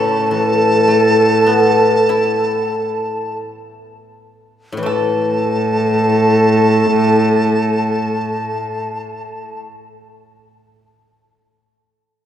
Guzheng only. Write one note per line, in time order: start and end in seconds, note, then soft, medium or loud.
0.00 3.42 A2 medium
0.00 0.87 F#3 medium
0.31 2.74 E3 soft
0.88 3.43 A3 medium
1.46 4.13 B3 medium
2.09 4.86 E4 medium
4.72 11.35 A2 medium
4.77 11.40 E3 soft
4.83 10.49 A3 soft